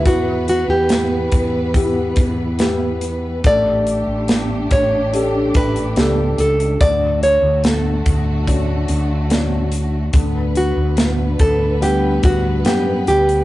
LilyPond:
<<
  \new Staff \with { instrumentName = "Nylon-string guitar" } { \time 4/4 \key d \major \tempo 4 = 71 fis'8 fis'16 g'2~ g'8. r8 | d''4. cis''4 b'4 a'8 | d''8 cis''8 a'2 r4 | r8 fis'4 a'8 g'8 fis'8 g'8 g'8 | }
  \new Staff \with { instrumentName = "Felt piano" } { \time 4/4 \key d \major e2 <b e' g'>4 <b e' g'>4 | a2 <d' g' a'>4 <d' g' a'>4 | d2 <cis' d' fis'>4 <cis' d' fis'>4 | d2 <g b fis''>4 <b g' fis''>4 | }
  \new Staff \with { instrumentName = "String section" } { \time 4/4 \key d \major <e b b'>1 | <a d' g'>1 | <d a fis'>1 | <d b b'>1 | }
  \new Staff \with { instrumentName = "Fretless electric bass" } { \clef bass \time 4/4 \key d \major e,8. e,8. e,4 e,4. | a,,8. a,,8. a,,4 a,,8 cis,8 cis,8 | d,8. d,8. d,4 d,4. | d,8. d,8. d,4 d,8 fis,8 d,8 | }
  \new DrumStaff \with { instrumentName = "Drums" } \drummode { \time 4/4 <hh bd>8 hh8 <hh sn>8 <hh bd>8 <hh bd>8 <hh bd>8 <hh sn>8 hh8 | <hh bd>8 hh8 <hh sn>8 <hh bd>8 hh8 <hh bd>16 hh16 <hh sn>8 hh16 hh16 | <hh bd>8 hh8 <hh sn>8 <hh bd>8 <hh bd>8 hh8 <hh sn>8 hh8 | <hh bd>8 hh8 <hh sn>8 <hh bd>8 hh8 <hh bd>8 <hh sn>8 hh16 hh16 | }
>>